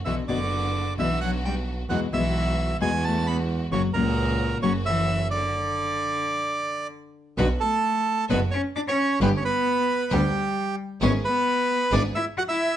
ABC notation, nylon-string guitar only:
X:1
M:4/4
L:1/8
Q:1/4=132
K:Bm
V:1 name="Nylon-string guitar"
[B,,D,B,DF] [B,,D,B,DF] z2 [B,,D,B,DF] z3 | [B,,E,^G,B,F] [B,,E,G,B,F] z2 [B,,E,G,B,F] z3 | [C,F,^A,CF] [C,F,A,CF] z2 [C,F,A,CF] z3 | z8 |
[B,,D,B,DF] z3 [B,,D,B,DF] z3 | [D,G,B,DG] z3 [D,G,B,DG] z3 | [^G,B,E] z3 [G,B,E] z3 |]